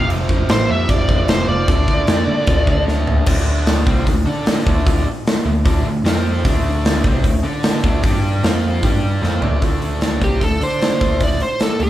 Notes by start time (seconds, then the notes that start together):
Already playing: F2 C3 F3
0.10 F1, crash
0.29 F1, kick
0.49 A1 C5, snare, crash
0.70 F2 E5
0.89 F1 D5, kick, crash
1.08 F1, kick
1.28 F1 C5, snare, crash
1.48 F1 D5
1.68 D2 D3 A3 D4, kick, crash
1.88 D2, kick
2.07 F2, snare, crash
2.27 D3
2.47 D2, kick, crash
2.67 D2, kick
2.88 D2, snare
3.07 D2, floor tom
3.26 D2 D3 A3 D4, kick, crash
3.66 snare, open hi-hat
3.87 C2 C3 G3 C4, kick
4.07 D2 D3 A3, kick, open hi-hat
4.26 D3 D4 A4 D5
4.46 snare, open hi-hat
4.66 D2 D3 A3 D4, kick
4.87 kick, open hi-hat
5.27 snare, open hi-hat
5.45 D2 D3 A3
5.65 D2 D3 A3 D4, kick, open hi-hat
5.84 D2 D3 A3
6.04 F2 F3 C4 F4, snare, open hi-hat
6.44 D2 D3 A3 D4, kick, open hi-hat
6.85 snare, open hi-hat
7.04 C2 C3 G3 C4, kick
7.24 D2 D3 A3, kick, open hi-hat
7.43 D3 D4 A4 D5
7.63 snare, open hi-hat
7.83 D2 D3 A3 D4, kick
8.03 G2 G3 D4 G4, kick, open hi-hat
8.43 F2 F3 C4 F4, snare, open hi-hat
8.82 G2 G3 D4 G4, kick, open hi-hat
9.22 F2 F3 C4 F4, snare
9.42 D2 D3 A3 D4, floor tom
9.61 D2 D3 A3 D4, kick, open hi-hat
9.82 open hi-hat
10.01 snare, open hi-hat
10.20 C2 C3 G3 C4, kick, open hi-hat
10.24 G4
10.40 D2 D3 A3 A4, kick, open hi-hat
10.60 D3 D4 A4 C5 D5, open hi-hat
10.81 snare, open hi-hat
11.00 D2 D3 A3 D4, kick, open hi-hat
11.20 D5, kick, open hi-hat
11.40 C5, open hi-hat
11.60 A4, snare, open hi-hat
11.80 D2 D3 A3 A4, open hi-hat